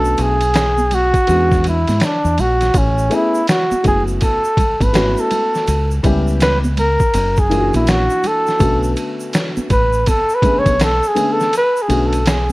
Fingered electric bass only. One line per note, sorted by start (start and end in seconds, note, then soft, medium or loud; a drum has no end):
0.00 0.16 B1 medium
0.19 1.11 B1 medium
1.29 1.84 E2 loud
1.88 2.01 G#2 medium
2.25 2.37 E2 medium
2.39 2.72 A#1 medium
2.74 3.08 A1 loud
3.71 muted fingered electric bass stroke soft
3.85 4.18 F#1 medium
4.80 5.14 G#1 medium
5.68 6.01 C#2 medium
6.04 6.96 C#2 loud
7.14 7.70 F#1 loud
7.74 8.07 A#1 loud
8.60 8.94 B1 loud
9.57 muted fingered electric bass stroke soft
9.70 10.04 A1 medium
10.66 11.00 B1 medium
11.90 12.52 B1 medium